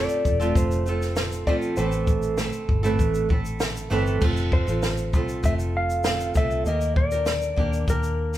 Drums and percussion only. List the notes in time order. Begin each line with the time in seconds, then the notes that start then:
0.09 shaker
0.25 kick, shaker
0.41 shaker
0.55 kick, shaker
0.71 shaker
0.86 shaker
1.02 snare, shaker
1.16 snare, shaker
1.32 shaker
1.47 kick
1.62 shaker
1.77 shaker
1.92 shaker
2.07 kick, shaker
2.23 shaker
2.38 snare, shaker
2.53 shaker
2.69 kick
2.84 shaker
2.99 kick, shaker
3.15 shaker
3.30 kick
3.45 shaker
3.60 snare, shaker
3.76 shaker
4.07 shaker
4.22 kick, crash
4.37 shaker
4.52 kick
4.68 shaker
4.83 snare, shaker
4.97 shaker
5.13 kick, shaker
5.29 shaker
5.44 kick, shaker
5.59 shaker
5.90 shaker
6.04 snare, shaker
6.20 shaker
6.35 kick, shaker
6.51 shaker
6.66 shaker
6.81 shaker
6.96 kick
7.11 shaker
7.26 snare, shaker
7.42 shaker
7.58 kick
7.73 shaker
7.88 kick, shaker
8.03 shaker
8.33 snare, shaker